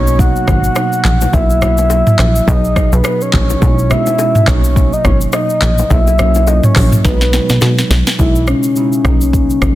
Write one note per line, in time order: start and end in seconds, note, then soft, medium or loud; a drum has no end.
0.00 0.34 B1 loud
0.00 0.82 B2 medium
0.00 0.83 F#3 medium
0.00 0.83 A#3 medium
0.00 0.83 D#4 loud
0.00 0.21 C#5 loud
0.07 shaker medium
0.19 1.35 F#5 loud
0.19 kick loud
0.19 low conga medium
0.19 shaker medium
0.36 shaker soft
0.48 0.70 G#1 loud
0.48 kick medium
0.48 cross-stick medium
0.48 low bongo medium
0.48 shaker medium
0.64 shaker medium
0.75 cross-stick loud
0.75 high bongo medium
0.75 shaker medium
0.93 shaker medium
1.05 1.27 A#1 medium
1.05 clap medium
1.05 shaker soft
1.21 low bongo medium
1.21 shaker loud
1.32 2.03 B1 loud
1.32 1.55 F#3 medium
1.32 1.55 A#3 medium
1.32 1.56 E4 medium
1.32 2.49 E5 loud
1.32 kick loud
1.32 low conga medium
1.32 shaker medium
1.50 shaker medium
1.61 2.44 F#3 medium
1.61 2.45 A#3 medium
1.61 2.46 E4 medium
1.61 cross-stick loud
1.61 low bongo medium
1.61 low conga medium
1.61 shaker medium
1.78 low bongo medium
1.78 shaker medium
1.90 high bongo medium
1.90 shaker medium
2.07 mid tom loud
2.07 shaker medium
2.19 2.41 A#1 medium
2.19 cross-stick medium
2.19 clap medium
2.19 shaker medium
2.36 shaker medium
2.46 2.82 B1 loud
2.46 3.39 B2 medium
2.46 3.40 F#3 medium
2.46 3.40 D#4 medium
2.46 3.40 G#4 medium
2.46 2.94 D#5 loud
2.46 kick loud
2.46 low conga medium
2.46 shaker medium
2.65 shaker soft
2.76 kick medium
2.76 cross-stick loud
2.76 low bongo medium
2.76 shaker medium
2.93 3.02 B1 medium
2.93 3.04 B4 medium
2.93 shaker medium
3.04 3.23 B4 medium
3.04 cross-stick loud
3.04 high bongo medium
3.04 shaker medium
3.21 3.33 C#5 medium
3.21 shaker medium
3.33 3.55 A#1 loud
3.33 3.92 C#5 loud
3.33 kick loud
3.33 clap medium
3.33 shaker medium
3.50 low bongo medium
3.50 shaker medium
3.60 3.97 B1 loud
3.60 3.83 B2 medium
3.60 3.83 G#3 medium
3.60 3.84 D#4 medium
3.60 3.84 E4 medium
3.60 kick loud
3.60 low conga medium
3.60 shaker medium
3.79 shaker medium
3.89 4.47 B2 medium
3.89 4.47 G#3 medium
3.89 4.48 C#4 medium
3.89 4.48 E4 medium
3.89 4.49 E5 loud
3.89 cross-stick loud
3.89 low bongo medium
3.89 low conga medium
3.89 shaker medium
4.06 low bongo medium
4.06 shaker medium
4.19 high bongo medium
4.19 shaker medium
4.35 mid tom loud
4.35 shaker medium
4.46 4.92 B1 loud
4.46 4.54 A#2 medium
4.46 5.40 F#3 medium
4.46 5.40 A#3 medium
4.46 5.40 D#4 medium
4.46 4.94 C#5 loud
4.46 kick loud
4.46 cross-stick loud
4.46 clap medium
4.46 shaker medium
4.53 5.42 B2 medium
4.64 shaker loud
4.76 kick loud
4.76 low conga medium
4.76 shaker medium
4.93 5.04 D#5 medium
4.93 shaker soft
5.05 5.27 G#1 medium
5.05 5.18 C#5 medium
5.05 kick medium
5.05 cross-stick loud
5.05 low bongo medium
5.05 shaker medium
5.21 shaker medium
5.32 5.92 D#5 medium
5.32 cross-stick loud
5.32 high bongo medium
5.32 shaker medium
5.50 shaker soft
5.62 5.84 A#1 loud
5.62 clap medium
5.62 shaker medium
5.78 low bongo medium
5.78 shaker medium
5.89 6.60 B1 loud
5.89 6.12 F#3 medium
5.89 6.12 A#3 medium
5.89 6.13 E4 medium
5.89 6.50 E5 loud
5.89 kick loud
5.89 low conga medium
5.89 shaker medium
6.07 high bongo medium
6.07 shaker medium
6.18 7.02 F#3 medium
6.18 7.02 A#3 medium
6.18 7.03 C#4 medium
6.18 cross-stick loud
6.18 low bongo medium
6.18 low conga medium
6.18 shaker medium
6.35 low bongo medium
6.35 shaker medium
6.47 6.64 D#5 medium
6.47 high bongo medium
6.47 shaker medium
6.64 6.76 C#5 medium
6.64 mid tom loud
6.64 shaker medium
6.76 6.98 A#1 loud
6.76 6.89 C#5 medium
6.76 kick loud
6.76 cross-stick medium
6.76 clap medium
6.76 open hi-hat medium
6.76 shaker medium
6.92 mid tom medium
6.92 shaker medium
7.04 7.40 B1 loud
7.04 7.96 B2 medium
7.04 7.97 F#3 medium
7.04 7.97 G#3 medium
7.04 7.98 D#4 medium
7.04 7.87 B4 medium
7.04 kick loud
7.04 snare medium
7.04 low conga medium
7.04 shaker medium
7.21 snare medium
7.21 shaker medium
7.33 snare medium
7.33 low bongo medium
7.33 shaker medium
7.49 7.59 B1 medium
7.49 snare medium
7.49 shaker medium
7.61 7.84 B2 loud
7.61 snare medium
7.61 high bongo medium
7.61 shaker medium
7.78 snare medium
7.78 shaker medium
7.90 8.03 B1 loud
7.90 snare loud
7.90 high bongo medium
7.90 shaker medium
8.07 snare loud
8.07 low bongo medium
8.07 shaker medium
8.18 8.54 B1 loud
8.18 8.62 B2 medium
8.18 8.62 G#3 medium
8.18 8.63 D#4 medium
8.18 8.50 E4 loud
8.18 8.63 E4 medium
8.18 kick loud
8.18 shaker medium
8.36 shaker medium
8.47 9.22 C#4 loud
8.47 cross-stick loud
8.47 shaker medium
8.63 shaker medium
8.75 9.04 B2 medium
8.75 9.05 G#3 medium
8.75 9.05 D#4 medium
8.75 9.05 E4 medium
8.75 shaker medium
8.93 shaker medium
9.04 9.49 B1 loud
9.04 9.12 A#2 medium
9.04 9.75 F#3 medium
9.04 9.75 A#3 medium
9.04 9.75 D#4 medium
9.04 kick medium
9.04 cross-stick medium
9.04 shaker medium
9.10 9.75 B2 medium
9.21 9.75 C#4 loud
9.21 shaker medium
9.33 kick loud
9.33 shaker medium
9.50 shaker soft
9.62 9.75 G#1 medium
9.62 kick medium
9.62 cross-stick loud
9.62 shaker medium